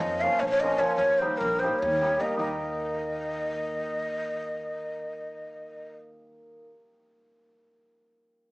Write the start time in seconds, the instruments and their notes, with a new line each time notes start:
Already playing: hammered dulcimer F3
0.00 upright bass F2, ney D#5
0.21 hammered dulcimer F3 A#3 C#4 F4 A#4, ney F5
0.40 upright bass A#1, ney C#5
0.47 ney C#5
0.60 hammered dulcimer F3 A#3 C#4 F4 A#4, ney D#5
0.79 hammered dulcimer F3 A#3 C#4 F4 A#4, ney C#5
0.96 upright bass D#2, ney C#5
1.19 hammered dulcimer G3 A#3 D#4 G4, ney C5
1.23 hammered dulcimer A#4
1.38 upright bass A#1, ney A#4
1.59 hammered dulcimer G3 A#3 D#4, ney C5
1.64 hammered dulcimer G4 A#4
1.79 upright bass D#2, ney C#5
2.01 hammered dulcimer G3 A#3 D#4 G4 A#4
2.20 hammered dulcimer G3 A#3 D#4 G4 A#4, ney D#5
2.34 hammered dulcimer A#3 D#4
2.38 upright bass D#2, hammered dulcimer G4 A#4, ney D#5